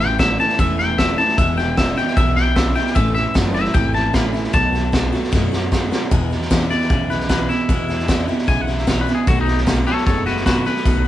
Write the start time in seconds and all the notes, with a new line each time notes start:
Already playing: A1 A2 E3
0.00 A3 C#4 E4 G5
0.19 A2 E3 F#3 A3 C#4 E4 E5, kick, snare, hi-hat pedal
0.39 A2 E3 A3 C#4 E4 A5, snare
0.49 snare
0.59 E1 A2 E3 A3 C#4 E4 E5, kick, snare
0.79 A3 C#4 E4 G5, snare
0.98 A2 E3 F#3 A3 C#4 E4 E5, kick, snare, hi-hat pedal
1.18 A2 E3 A3 C#4 E4 A5, snare
1.28 snare
1.38 E1 E2 B2 E3 G#3 B3 E4 E5, kick, snare
1.57 E3 G#3 B3 E4 G5, snare
1.77 E2 C#3 E3 G#3 B3 E4 E5, kick, snare, hi-hat pedal
1.97 E2 B2 E3 G#3 B3 E4 G5, snare
2.07 snare
2.16 B1 E2 B2 E3 G#3 B3 E4 E5, kick, snare
2.36 E3 G#3 B3 E4 G5, snare
2.56 E2 C#3 E3 G#3 B3 E4 E5, kick, snare, hi-hat pedal
2.75 E2 B2 E3 G#3 B3 E4 G5, snare
2.86 snare
2.95 A1 A2 E3 A3 C#4 E4 E5, kick, snare
3.14 A3 C#4 E4 E5, snare
3.34 F#1 A2 E3 F#3 A3 C#4 E4, kick, snare, hi-hat pedal
3.54 A2 E3 A3 C#4 E4 E5, snare
3.65 snare
3.74 G#1 A2 E3 A3 C#4 E4 G5, kick, snare
3.93 A3 C#4 E4 A5, snare
4.13 A1 A2 E3 F#3 A3 C#4 E4 B5, kick, snare, hi-hat pedal
4.33 A2 E3 A3 C#4 E4, snare
4.44 snare
4.53 B1 B2 D#3 F#3 A3 B3 F#4 A5, kick, snare
4.73 A3 B3 F#4, snare
4.92 B2 D#3 G#3 A3 B3 F#4, kick, snare, hi-hat pedal
5.12 B2 F#3 A3 B3 F#4, snare
5.23 snare
5.32 F#2 B2 D#3 F#3 A3 B3 F#4, kick, snare
5.51 A3 B3 F#4, snare
5.72 B2 D#3 G#3 A3 B3 F#4, kick, snare, hi-hat pedal
5.91 B2 F#3 A3 B3 F#4, snare
6.11 E2 B2 E3 G#3 B3 E4, kick, snare
6.31 E3 G#3 B3 E4, snare
6.41 snare
6.50 E2 B2 C#3 E3 G#3 B3 E4, kick, snare, hi-hat pedal
6.70 E2 B2 E3 G#3 B3 E4 D5, snare
6.81 snare
6.90 B1 E2 C#3 E3 G#3 B3 E4, kick, snare
7.10 E3 G#3 B3 E4 B4, snare
7.20 snare
7.29 E2 B2 E3 G#3 B3 E4 B4, kick, snare, hi-hat pedal
7.49 E2 B2 E3 G#3 B3 E4, snare
7.69 E2 B2 E3 G#3 B3 E4, kick, snare
7.88 E3 G#3 B3 E4, snare
7.99 snare
8.08 E2 B2 C#3 E3 G#3 B3 E4, kick, snare, hi-hat pedal
8.28 E2 B2 E3 G#3 B3 E4, snare
8.38 snare
8.47 B1 E2 C#3 E3 G#3 B3 E4 G#5, kick, snare
8.61 F#5
8.67 E3 G#3 B3 E4, snare
8.75 E5, snare
8.87 E2 B2 E3 G#3 B3 E4 C#5, kick, snare, hi-hat pedal
9.01 B4
9.07 E2 B2 E3 G#3 B3 E4, snare
9.15 G#4
9.27 B1 B2 D#3 F#3 A3 B3 F#4, kick, snare
9.41 D#4
9.47 A3 B3 F#4, snare
9.57 snare
9.66 B2 D#3 G#3 A3 B3 F#4, kick, snare, hi-hat pedal
9.86 B2 F#3 A3 B3 F#4 A4 C#5, snare
9.97 snare
10.06 F#1 B2 D#3 G#3 A3 B3 F#4 A4 C#5, kick, snare
10.26 A3 B3 F#4 B4, snare
10.36 snare
10.46 B2 D#3 F#3 A3 B3 F#4 B4, kick, snare, hi-hat pedal
10.66 B2 F#3 A3 B3 F#4 B4, snare
10.76 snare
10.85 B1 B2 D#3 F#3 A3 B3 F#4, kick, snare
11.05 F#4